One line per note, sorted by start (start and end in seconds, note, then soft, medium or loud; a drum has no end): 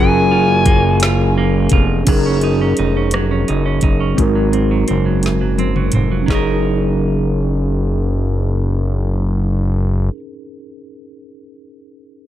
0.00 1.69 F#1 loud
0.00 2.08 F#3 medium
0.00 0.66 A#3 medium
0.00 0.31 C#4 medium
0.00 2.02 C#4 medium
0.00 2.03 F4 medium
0.00 2.05 G#4 medium
0.00 2.06 A#4 medium
0.00 1.34 G#5 loud
0.32 1.01 F4 medium
0.66 1.37 A#3 medium
0.66 kick loud
0.66 closed hi-hat medium
1.00 1.72 F4 medium
1.00 snare loud
1.00 closed hi-hat medium
1.38 2.26 A#3 medium
1.69 2.04 F1 medium
1.69 2.15 F4 medium
1.69 kick medium
1.69 closed hi-hat medium
2.05 2.74 F#1 loud
2.05 3.14 F#3 medium
2.05 4.13 C#4 medium
2.05 4.14 D#4 medium
2.05 kick loud
2.05 closed hi-hat medium
2.05 crash medium
2.10 4.15 G#4 medium
2.10 4.16 A#4 medium
2.26 2.60 C#4 medium
2.41 2.78 D#4 medium
2.41 closed hi-hat soft
2.61 2.96 C#4 medium
2.77 3.45 F1 medium
2.77 3.48 D#4 medium
2.77 closed hi-hat medium
2.97 3.30 C#4 medium
3.11 4.35 F#3 medium
3.11 cross-stick loud
3.11 closed hi-hat medium
3.31 3.64 C#4 soft
3.48 3.80 F#1 medium
3.48 3.83 D#4 medium
3.48 closed hi-hat soft
3.66 3.99 C#4 medium
3.81 4.15 F#1 medium
3.81 6.32 D#4 medium
3.81 kick medium
3.81 closed hi-hat medium
4.00 4.25 C#4 medium
4.15 4.85 G#1 loud
4.15 5.22 G#2 medium
4.15 6.23 C4 medium
4.15 6.24 D#4 medium
4.15 kick medium
4.15 closed hi-hat medium
4.20 6.25 F#4 medium
4.20 6.27 A#4 medium
4.36 4.71 F#3 medium
4.53 4.87 C4 soft
4.53 closed hi-hat soft
4.71 5.05 F#3 soft
4.88 5.90 F#1 medium
4.88 5.58 C4 medium
4.88 closed hi-hat medium
5.06 5.41 F#3 soft
5.23 6.36 G#2 medium
5.23 snare soft
5.23 closed hi-hat medium
5.41 5.76 F#3 soft
5.58 5.93 C4 medium
5.58 closed hi-hat soft
5.58 high tom medium
5.76 6.11 F#3 soft
5.76 mid tom medium
5.92 6.26 F1 medium
5.92 6.29 C4 soft
5.92 closed hi-hat medium
5.92 mid tom medium
6.12 6.26 F#3 soft
6.23 10.11 F#3 medium
6.23 10.03 C#4 medium
6.27 10.10 F#1 medium
6.27 10.14 C#4 medium
6.27 10.07 D#4 medium
6.27 kick medium
6.27 snare medium
6.32 10.17 D#4 medium
6.32 10.12 G#4 medium
6.32 10.19 A#4 medium
6.36 10.16 A#4 medium